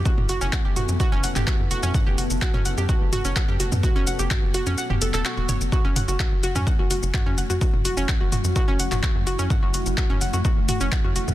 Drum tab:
HH |--o---o---o---o-|--o---o---o---o-|--o---o---o---o-|--o---o---o---o-|
SH |x-xxx-xxx-xxx-xx|x-xxx-xxx-xxx-xx|x-xxx-xxx-xxx-xx|x-xxx-xxx-xxx-xx|
CP |----x------xx---|----x-------x---|----x------xx---|----x-------x---|
T2 |-o----o----o----|o----o----o----o|----o----o----o-|--o----o----o---|
BD |o---o---o---o---|o---o---o---o---|o---o-----------|o---o---o---o---|

HH |--o---o---o---o-|--o---o---o---o-|
SH |x-xxx-xxx-xxx-xx|x-xxx-xxx-xxx-xx|
CP |----x------xx---|----x-------x---|
T2 |-o----o----o----|o----o----o----o|
BD |o---o---o---o---|o---o---o---o---|